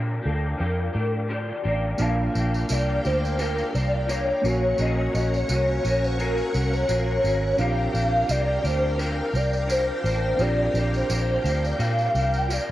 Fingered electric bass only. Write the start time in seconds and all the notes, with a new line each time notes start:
Already playing: A#2
0.26 D2
0.60 F2
0.95 A2
1.65 A1
2.00 A#1
2.35 A#1
2.70 C2
3.05 D2
3.75 C2
4.44 A#1
4.79 A#1
5.14 A#1
5.49 C2
5.85 A#1
6.55 C2
6.89 A#1
7.24 G#1
7.59 A#1
7.94 A#1
8.29 C2
8.64 D2
9.33 C2
10.04 A1
10.39 A#1
10.74 A#1
11.10 A#1
11.44 D2
11.79 A#2
12.15 C2